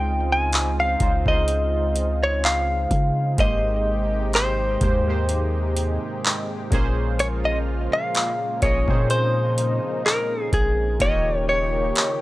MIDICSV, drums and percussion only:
0, 0, Header, 1, 2, 480
1, 0, Start_track
1, 0, Tempo, 952381
1, 1706, Time_signature, 4, 2, 24, 8
1, 6156, End_track
2, 0, Start_track
2, 0, Title_t, "Drums"
2, 265, Note_on_c, 9, 42, 67
2, 273, Note_on_c, 9, 39, 117
2, 315, Note_off_c, 9, 42, 0
2, 323, Note_off_c, 9, 39, 0
2, 504, Note_on_c, 9, 42, 74
2, 506, Note_on_c, 9, 36, 101
2, 555, Note_off_c, 9, 42, 0
2, 556, Note_off_c, 9, 36, 0
2, 634, Note_on_c, 9, 36, 94
2, 685, Note_off_c, 9, 36, 0
2, 745, Note_on_c, 9, 42, 77
2, 795, Note_off_c, 9, 42, 0
2, 986, Note_on_c, 9, 42, 82
2, 1036, Note_off_c, 9, 42, 0
2, 1234, Note_on_c, 9, 39, 115
2, 1284, Note_off_c, 9, 39, 0
2, 1465, Note_on_c, 9, 36, 88
2, 1466, Note_on_c, 9, 42, 73
2, 1516, Note_off_c, 9, 36, 0
2, 1516, Note_off_c, 9, 42, 0
2, 1704, Note_on_c, 9, 42, 73
2, 1706, Note_on_c, 9, 36, 108
2, 1755, Note_off_c, 9, 42, 0
2, 1756, Note_off_c, 9, 36, 0
2, 2184, Note_on_c, 9, 42, 63
2, 2192, Note_on_c, 9, 39, 122
2, 2235, Note_off_c, 9, 42, 0
2, 2242, Note_off_c, 9, 39, 0
2, 2424, Note_on_c, 9, 42, 74
2, 2425, Note_on_c, 9, 36, 100
2, 2475, Note_off_c, 9, 42, 0
2, 2476, Note_off_c, 9, 36, 0
2, 2665, Note_on_c, 9, 42, 74
2, 2716, Note_off_c, 9, 42, 0
2, 2906, Note_on_c, 9, 42, 86
2, 2956, Note_off_c, 9, 42, 0
2, 3153, Note_on_c, 9, 39, 113
2, 3203, Note_off_c, 9, 39, 0
2, 3386, Note_on_c, 9, 36, 108
2, 3386, Note_on_c, 9, 42, 79
2, 3436, Note_off_c, 9, 36, 0
2, 3436, Note_off_c, 9, 42, 0
2, 3626, Note_on_c, 9, 42, 74
2, 3676, Note_off_c, 9, 42, 0
2, 4106, Note_on_c, 9, 42, 65
2, 4113, Note_on_c, 9, 39, 117
2, 4156, Note_off_c, 9, 42, 0
2, 4164, Note_off_c, 9, 39, 0
2, 4345, Note_on_c, 9, 42, 78
2, 4346, Note_on_c, 9, 36, 102
2, 4395, Note_off_c, 9, 42, 0
2, 4396, Note_off_c, 9, 36, 0
2, 4475, Note_on_c, 9, 36, 100
2, 4525, Note_off_c, 9, 36, 0
2, 4586, Note_on_c, 9, 42, 79
2, 4637, Note_off_c, 9, 42, 0
2, 4827, Note_on_c, 9, 42, 82
2, 4878, Note_off_c, 9, 42, 0
2, 5074, Note_on_c, 9, 39, 110
2, 5125, Note_off_c, 9, 39, 0
2, 5305, Note_on_c, 9, 36, 94
2, 5306, Note_on_c, 9, 42, 77
2, 5356, Note_off_c, 9, 36, 0
2, 5356, Note_off_c, 9, 42, 0
2, 5545, Note_on_c, 9, 42, 73
2, 5546, Note_on_c, 9, 36, 104
2, 5595, Note_off_c, 9, 42, 0
2, 5596, Note_off_c, 9, 36, 0
2, 6025, Note_on_c, 9, 42, 65
2, 6033, Note_on_c, 9, 39, 114
2, 6076, Note_off_c, 9, 42, 0
2, 6083, Note_off_c, 9, 39, 0
2, 6156, End_track
0, 0, End_of_file